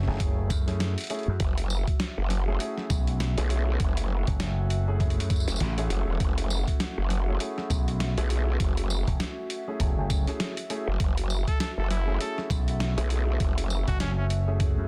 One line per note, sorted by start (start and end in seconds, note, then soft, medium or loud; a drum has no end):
0.00 14.88 F#4 medium
0.00 14.88 E5 medium
0.00 snare soft
0.07 0.48 F#1 loud
0.07 0.18 A3 medium
0.07 0.18 C#4 medium
0.07 0.18 E4 medium
0.07 0.18 G#4 medium
0.07 snare soft
0.11 snare soft
0.14 snare soft
0.17 0.64 A3 medium
0.17 0.64 C#4 medium
0.17 0.64 E4 medium
0.17 0.64 G#4 medium
0.17 kick loud
0.17 snare soft
0.17 closed hi-hat medium
0.50 0.95 F#2 loud
0.50 kick loud
0.50 closed hi-hat medium
0.50 tambourine medium
0.67 0.92 A3 medium
0.67 0.92 C#4 medium
0.67 0.92 E4 medium
0.67 0.92 G#4 medium
0.67 snare soft
0.67 closed hi-hat soft
0.80 snare loud
0.80 closed hi-hat medium
0.98 closed hi-hat medium
1.01 closed hi-hat soft
1.04 closed hi-hat soft
1.07 closed hi-hat soft
1.10 1.28 A3 medium
1.10 1.28 C#4 medium
1.10 1.28 E4 medium
1.10 1.28 G#4 loud
1.10 closed hi-hat medium
1.15 closed hi-hat soft
1.19 closed hi-hat soft
1.23 closed hi-hat soft
1.28 1.38 F#2 loud
1.40 1.85 F#1 loud
1.40 11.00 F#5 medium
1.40 kick loud
1.40 closed hi-hat medium
1.58 closed hi-hat medium
1.70 tambourine medium
1.87 kick medium
1.87 closed hi-hat soft
2.00 snare loud
2.00 closed hi-hat medium
2.18 2.58 F#1 loud
2.30 snare soft
2.30 closed hi-hat medium
2.47 2.58 A3 medium
2.47 2.58 C#4 medium
2.47 2.58 E4 medium
2.47 2.58 G#4 medium
2.60 3.33 A3 medium
2.60 3.33 C#4 medium
2.60 3.33 E4 medium
2.60 3.34 G#4 medium
2.60 closed hi-hat medium
2.78 snare soft
2.90 3.35 B1 loud
2.90 kick loud
2.90 closed hi-hat medium
2.90 tambourine medium
3.07 closed hi-hat soft
3.20 snare loud
3.20 closed hi-hat medium
3.37 3.78 B1 loud
3.37 4.83 A3 medium
3.37 4.83 C#4 medium
3.37 4.83 E4 medium
3.37 4.83 G#4 loud
3.37 closed hi-hat medium
3.50 closed hi-hat medium
3.80 4.25 F#1 loud
3.80 kick loud
3.80 closed hi-hat medium
3.97 closed hi-hat medium
4.27 5.15 F#1 medium
4.27 kick medium
4.27 closed hi-hat soft
4.40 snare loud
4.40 closed hi-hat medium
4.70 closed hi-hat medium
4.88 4.98 A3 medium
4.88 4.98 C#4 medium
4.88 4.98 E4 medium
4.88 4.98 G#4 medium
5.00 5.74 A3 medium
5.00 5.74 C#4 medium
5.00 5.74 E4 medium
5.00 5.74 G#4 medium
5.00 kick loud
5.00 closed hi-hat soft
5.10 closed hi-hat soft
5.18 5.45 F#2 medium
5.18 closed hi-hat medium
5.30 kick loud
5.30 closed hi-hat medium
5.30 tambourine soft
5.36 tambourine soft
5.40 tambourine soft
5.48 5.58 F#1 loud
5.48 snare soft
5.48 closed hi-hat soft
5.48 tambourine soft
5.50 tambourine soft
5.56 tambourine medium
5.60 5.88 A1 loud
5.60 snare loud
5.60 closed hi-hat medium
5.78 7.24 A3 loud
5.78 7.24 C#4 medium
5.78 7.24 E4 medium
5.78 7.24 G#4 loud
5.78 closed hi-hat medium
5.90 6.05 F#1 loud
5.90 closed hi-hat medium
6.08 6.18 E1 loud
6.20 6.65 F#1 medium
6.20 kick loud
6.20 closed hi-hat medium
6.38 closed hi-hat medium
6.50 tambourine medium
6.68 kick medium
6.68 closed hi-hat soft
6.80 snare loud
6.80 closed hi-hat medium
6.98 7.38 F#1 loud
7.10 snare soft
7.10 closed hi-hat medium
7.28 7.38 A3 medium
7.28 7.39 C#4 medium
7.28 7.38 E4 medium
7.28 7.38 G#4 medium
7.40 8.14 A3 medium
7.40 8.13 C#4 medium
7.40 8.13 E4 medium
7.40 8.14 G#4 medium
7.40 closed hi-hat medium
7.58 snare soft
7.70 8.15 B1 loud
7.70 kick loud
7.70 closed hi-hat medium
7.70 tambourine medium
7.88 closed hi-hat soft
8.00 snare loud
8.00 closed hi-hat medium
8.18 8.58 B1 medium
8.18 9.64 A3 loud
8.18 9.64 C#4 medium
8.18 9.64 E4 medium
8.18 9.64 G#4 loud
8.18 closed hi-hat medium
8.30 closed hi-hat medium
8.60 9.05 F#1 loud
8.60 kick loud
8.60 closed hi-hat medium
8.77 closed hi-hat medium
8.90 tambourine medium
9.07 9.18 E1 medium
9.07 kick medium
9.07 closed hi-hat soft
9.20 snare loud
9.20 closed hi-hat medium
9.50 closed hi-hat medium
9.68 9.78 A3 medium
9.68 9.78 C#4 medium
9.68 9.78 E4 medium
9.68 9.78 G#4 medium
9.80 9.95 E1 loud
9.80 10.24 A3 medium
9.80 10.24 C#4 medium
9.80 10.24 E4 medium
9.80 10.24 G#4 medium
9.80 kick loud
9.80 closed hi-hat medium
9.98 10.25 F#1 medium
10.10 kick loud
10.10 closed hi-hat medium
10.10 tambourine medium
10.27 10.52 A3 medium
10.27 10.52 C#4 medium
10.27 10.52 E4 medium
10.27 10.52 G#4 medium
10.27 snare soft
10.27 closed hi-hat soft
10.40 snare loud
10.40 closed hi-hat medium
10.57 closed hi-hat medium
10.70 10.88 A3 medium
10.70 10.88 C#4 medium
10.70 10.88 E4 medium
10.70 10.88 G#4 loud
10.70 closed hi-hat medium
10.88 10.98 F#1 loud
11.00 11.45 F#1 loud
11.00 kick loud
11.00 closed hi-hat medium
11.18 closed hi-hat medium
11.30 tambourine medium
11.48 11.58 A4 medium
11.48 kick medium
11.48 closed hi-hat soft
11.60 11.72 A4 medium
11.60 snare loud
11.60 closed hi-hat medium
11.78 12.18 F#1 loud
11.78 11.86 A4 medium
11.91 12.18 E4 medium
11.91 snare soft
11.91 closed hi-hat medium
12.07 12.18 A3 medium
12.07 12.18 C#4 medium
12.07 12.18 E4 medium
12.07 12.18 G#4 medium
12.20 12.93 A3 medium
12.20 12.93 C#4 medium
12.20 12.93 E4 medium
12.20 12.93 G#4 medium
12.20 12.39 A4 loud
12.20 closed hi-hat medium
12.38 snare soft
12.50 12.95 B1 loud
12.50 kick loud
12.50 closed hi-hat medium
12.50 tambourine medium
12.68 closed hi-hat soft
12.80 snare loud
12.80 closed hi-hat medium
12.97 13.38 B1 loud
12.97 14.43 A3 loud
12.97 14.43 C#4 medium
12.97 14.43 E4 medium
12.97 14.43 G#4 loud
12.97 closed hi-hat medium
13.10 closed hi-hat medium
13.40 13.85 F#1 loud
13.40 kick loud
13.40 closed hi-hat medium
13.58 closed hi-hat medium
13.70 tambourine medium
13.88 14.75 F#1 loud
13.88 13.98 F#4 loud
13.88 kick medium
13.88 closed hi-hat soft
14.00 14.11 C#4 medium
14.00 snare loud
14.00 closed hi-hat medium
14.18 14.26 C#4 medium
14.30 closed hi-hat medium
14.47 14.58 A3 medium
14.47 14.58 C#4 medium
14.47 14.58 E4 medium
14.47 14.58 G#4 medium
14.60 14.88 A3 medium
14.60 14.88 C#4 medium
14.60 14.88 E4 medium
14.60 14.88 G#4 medium
14.60 kick loud
14.60 closed hi-hat medium
14.77 14.88 F#2 loud